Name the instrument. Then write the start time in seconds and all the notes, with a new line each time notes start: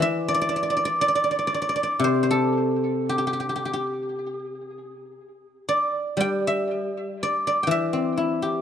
guzheng
Already playing: D3 C5 D5
0.00 E3 E5
0.28 D5
0.34 D5
0.41 D5
0.49 D5
0.56 D5
0.63 D5
0.70 D5
0.77 D5
0.85 D5
1.01 D5
1.08 D5
1.15 D5
1.24 D5
1.31 D5
1.39 D5
1.47 D5
1.54 D5
1.62 D5
1.69 D5
1.76 D5
1.83 D5
1.99 C3
2.04 C5
2.23 C5
2.31 A4
3.09 G4
3.18 G4
3.27 G4
3.33 G4
3.40 G4
3.49 G4
3.56 G4
3.65 G4
3.73 G4
5.69 D5
6.17 G3 G5
6.47 E5
7.23 D5
7.47 D5
7.63 E3 G5
7.71 E5
7.93 C4
8.17 E4
8.42 G4